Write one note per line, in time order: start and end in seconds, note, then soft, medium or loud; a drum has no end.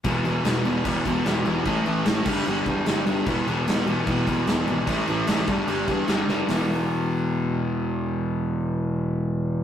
0.04 0.19 E1 medium
0.04 0.23 E2 medium
0.04 0.24 B2 loud
0.04 0.25 E3 loud
0.04 kick loud
0.04 crash medium
0.24 0.39 E1 medium
0.24 0.43 E2 medium
0.24 0.44 B2 medium
0.24 0.45 E3 medium
0.24 crash medium
0.44 0.59 E1 loud
0.44 0.64 E2 medium
0.44 0.64 B2 loud
0.44 0.65 E3 loud
0.44 snare loud
0.44 crash medium
0.65 0.80 E1 medium
0.65 0.84 E2 medium
0.65 0.85 B2 medium
0.65 0.85 E3 medium
0.65 crash medium
0.85 0.99 E1 loud
0.85 1.04 E2 loud
0.85 1.05 B2 loud
0.85 1.06 E3 loud
0.85 kick loud
0.85 crash medium
1.05 1.19 E1 medium
1.05 1.24 E2 medium
1.05 1.24 B2 medium
1.05 1.25 E3 medium
1.05 kick medium
1.05 crash medium
1.25 1.40 E1 medium
1.25 1.43 E2 medium
1.25 1.44 B2 loud
1.25 1.45 E3 loud
1.25 snare loud
1.25 crash medium
1.44 1.60 E1 medium
1.44 1.64 E2 medium
1.44 1.64 B2 medium
1.44 1.64 E3 medium
1.44 crash medium
1.65 1.80 A1 medium
1.65 1.84 A2 medium
1.65 1.85 E3 loud
1.65 1.86 A3 loud
1.65 kick loud
1.65 crash medium
1.85 2.00 A1 medium
1.85 2.05 A2 medium
1.85 2.06 E3 medium
1.85 2.06 A3 medium
1.85 crash medium
2.06 2.20 A1 medium
2.06 2.25 A2 loud
2.06 2.25 E3 medium
2.06 2.26 A3 loud
2.06 snare loud
2.06 crash medium
2.25 2.40 G1 medium
2.25 2.46 G2 medium
2.25 2.46 D3 loud
2.25 2.47 G3 loud
2.25 kick loud
2.25 crash loud
2.46 2.61 G1 loud
2.46 2.66 G2 loud
2.46 2.67 D3 loud
2.46 2.67 G3 loud
2.46 crash medium
2.66 2.80 E2 loud
2.66 2.86 G2 medium
2.66 2.87 D3 medium
2.66 2.87 G3 medium
2.66 kick medium
2.66 crash medium
2.86 3.00 G1 loud
2.86 3.05 G2 loud
2.86 3.06 D3 medium
2.86 3.06 G3 loud
2.86 snare loud
2.86 crash medium
3.07 3.21 G1 medium
3.07 3.26 G2 medium
3.07 3.26 D3 medium
3.07 3.26 G3 medium
3.07 crash medium
3.26 3.41 E1 medium
3.26 3.46 E2 medium
3.26 3.46 B2 loud
3.26 3.46 E3 loud
3.26 kick loud
3.26 crash medium
3.47 3.61 E1 medium
3.47 3.65 E2 medium
3.47 3.66 B2 medium
3.47 3.66 E3 medium
3.47 crash medium
3.66 3.81 E1 medium
3.66 3.85 E2 loud
3.66 3.86 B2 medium
3.66 3.86 E3 loud
3.66 snare loud
3.66 crash medium
3.86 4.01 E1 medium
3.86 4.05 E2 medium
3.86 4.06 B2 medium
3.86 4.07 E3 loud
3.86 crash medium
4.06 4.21 E1 loud
4.06 4.27 E2 medium
4.06 4.27 B2 loud
4.06 4.27 E3 loud
4.06 kick loud
4.06 crash medium
4.27 4.41 E1 medium
4.27 4.46 E2 medium
4.27 4.47 B2 medium
4.27 4.48 E3 medium
4.27 kick medium
4.27 crash medium
4.47 4.61 E1 medium
4.47 4.66 E2 medium
4.47 4.66 B2 medium
4.47 4.67 E3 loud
4.47 snare loud
4.47 crash medium
4.67 4.82 G#1 medium
4.67 4.86 E2 medium
4.67 4.86 B2 medium
4.67 4.86 E3 medium
4.67 crash medium
4.87 5.01 A1 medium
4.87 5.05 A2 medium
4.87 5.06 E3 loud
4.87 5.06 A3 loud
4.87 kick loud
4.87 crash medium
5.07 5.22 A1 medium
5.07 5.26 A2 medium
5.07 5.26 E3 medium
5.07 5.27 A3 medium
5.07 crash medium
5.27 5.42 A1 medium
5.27 5.46 A2 medium
5.27 5.47 E3 loud
5.27 5.47 A3 loud
5.27 snare loud
5.27 crash loud
5.47 5.62 G1 medium
5.47 5.66 G2 medium
5.47 5.66 D3 medium
5.47 5.67 G3 loud
5.47 kick loud
5.47 crash medium
5.67 5.82 G1 loud
5.67 5.86 G2 medium
5.67 5.87 D3 loud
5.67 5.88 G3 loud
5.67 crash medium
5.88 6.02 E2 medium
5.88 6.06 G2 medium
5.88 6.07 D3 medium
5.88 6.08 G3 loud
5.88 kick medium
5.88 crash medium
6.08 6.23 G1 medium
6.08 6.27 G2 medium
6.08 6.28 D3 medium
6.08 6.28 G3 loud
6.08 snare loud
6.08 crash medium
6.28 6.43 F#1 medium
6.28 6.47 G2 medium
6.28 6.48 D3 medium
6.28 6.48 G3 medium
6.28 snare medium
6.47 9.64 E1 loud
6.47 9.64 E2 loud
6.47 9.64 B2 loud
6.47 snare medium
6.47 open hi-hat medium
6.52 9.64 E3 loud